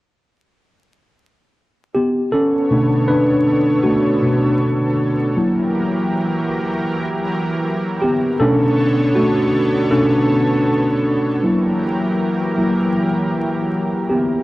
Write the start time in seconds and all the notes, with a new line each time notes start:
1.95 B3 G4
2.32 D3 B3 C#4 A4 C#5
2.71 B2 A3 D4
3.08 D4 B4
3.83 A3 F#4
4.23 B2 A3 D4
5.37 E3 F#3 A#3 E4 G4 A#4
8.02 B3 G4
8.40 B2 D3 A3 B3 C#4 D4 A4 C#5
9.15 A3 F#4
9.91 B2 A3 C#4 D4 A4
11.44 E3 F#3 A#3 E4 G4 A#4
12.58 F#3 A#3 E4
14.09 B3 G4